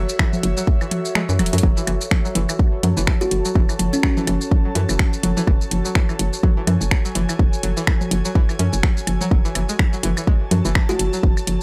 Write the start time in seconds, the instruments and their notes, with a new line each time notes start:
Already playing: analog synth pad F#4 C#5 E5, synth texture A4
0.09 shaker
0.19 synth pluck E3, finger snap, kick, high tom, high woodblock
0.33 low conga, shaker
0.43 fm bass F#1, closed hi-hat, high tom
0.57 synth pluck F#3, shaker
0.67 kick, high tom
0.81 synth pluck E3, high woodblock, shaker
0.91 closed hi-hat, high tom
1.05 shaker
1.15 synth pluck G#3, finger snap, high tom
1.29 fm bass F#2, synth pluck E3, shaker
1.39 fm bass E1, synth pluck F#3, closed hi-hat, high tom, low conga, high woodblock
1.46 closed hi-hat
1.53 fm bass F#2, synth pluck F#3, closed hi-hat, low conga
1.58 closed hi-hat
1.63 fm bass F#1, synth pluck F#3, synth texture A4, kick, high tom
1.77 synth pluck E3, shaker
1.87 fm bass F#1, synth pluck E3, closed hi-hat, high tom, high woodblock
2.01 shaker
2.11 finger snap, kick, high tom
2.25 synth pluck F#3, shaker
2.35 fm bass F#1, synth pluck E3, closed hi-hat, high tom
2.49 synth pluck E3, high woodblock, shaker
2.58 analog synth pad A5, kick, high tom
2.83 fm bass F#2, synth pluck F#3, closed hi-hat, high tom, low conga
2.97 fm bass F#1, synth pluck E3, shaker
3.07 synth pluck E3, finger snap, kick, high tom, high woodblock
3.21 kalimba F#4, shaker
3.31 fm bass F#1, closed hi-hat, high tom
3.45 synth pluck F#3, shaker
3.55 fm bass F#1, synth pluck E3, kick, high tom
3.69 synth pluck E3, high woodblock, shaker
3.79 fm bass F#1, closed hi-hat, high tom
3.93 kalimba C#4, shaker
4.03 synth pluck F#3, kalimba C#4, finger snap, kick, high tom
4.17 synth pluck E3, low conga, shaker
4.27 fm bass F#1, synth pluck E3, closed hi-hat, high tom, high woodblock
4.41 shaker
4.51 kick, high tom
4.65 synth pluck F#3
4.75 fm bass F#2, synth pluck E3, closed hi-hat, high tom
4.89 fm bass F#1, synth pluck E3, high woodblock, shaker
4.99 finger snap, kick, high tom
5.13 shaker
5.23 fm bass F#1, synth pluck F#3, closed hi-hat, high tom, low conga
5.37 synth pluck E3, low conga, shaker
5.47 fm bass F#1, synth pluck E3, kick, high tom, high woodblock
5.61 shaker
5.71 fm bass F#1, closed hi-hat, high tom
5.85 synth pluck F#3, shaker
5.95 synth pluck E3, finger snap, kick, high tom
6.09 synth pluck E3, high woodblock, shaker
6.19 fm bass F#1, closed hi-hat, high tom
6.33 shaker
6.42 synth pluck F#3, analog synth pad G#5, kick, high tom
6.57 synth pluck E3
6.67 fm bass F#2, synth pluck E3, closed hi-hat, high tom, low conga, high woodblock
6.81 fm bass F#1, shaker
6.91 finger snap, kick, high tom
7.05 synth pluck F#3, shaker
7.15 fm bass F#1, synth pluck E3, closed hi-hat, high tom
7.29 synth pluck E3, high woodblock, shaker
7.39 fm bass F#1, kick, high tom
7.53 shaker
7.63 fm bass F#1, synth pluck F#3, closed hi-hat, high tom
7.77 synth pluck E3, shaker
7.87 synth pluck E3, finger snap, kick, high tom, high woodblock
8.01 low conga, shaker
8.11 fm bass F#1, closed hi-hat, high tom
8.25 synth pluck F#3, shaker
8.35 synth pluck E3, kick, high tom
8.49 synth pluck E3, high woodblock, shaker
8.59 fm bass F#2, synth pluck C#4, closed hi-hat, high tom
8.73 fm bass F#1, shaker
8.83 synth pluck F#3, finger snap, kick, high tom
8.97 shaker
9.07 fm bass F#1, closed hi-hat, high tom, low conga, high woodblock
9.21 synth pluck F#3, low conga, shaker
9.31 fm bass F#1, synth pluck F#3, kick, high tom
9.45 synth pluck E3, shaker
9.55 fm bass F#1, synth pluck E3, closed hi-hat, high tom, high woodblock
9.69 synth pluck G#3, shaker
9.79 finger snap, kick, high tom
9.93 synth pluck F#3, shaker
10.03 fm bass F#1, synth pluck E3, closed hi-hat, high tom
10.17 synth pluck E3, high woodblock, shaker
10.26 synth pluck G#3, analog synth pad A5, kick, high tom
10.51 fm bass F#2, synth pluck F#3, closed hi-hat, high tom, low conga
10.65 fm bass F#1, synth pluck E3, shaker
10.75 synth pluck E3, finger snap, kick, high tom, high woodblock
10.89 synth pluck G#3, kalimba F#4, shaker
10.99 fm bass F#1, closed hi-hat, high tom
11.13 synth pluck F#3, shaker
11.23 fm bass F#1, kick, high tom
11.37 high woodblock, shaker
11.47 fm bass F#1, closed hi-hat, high tom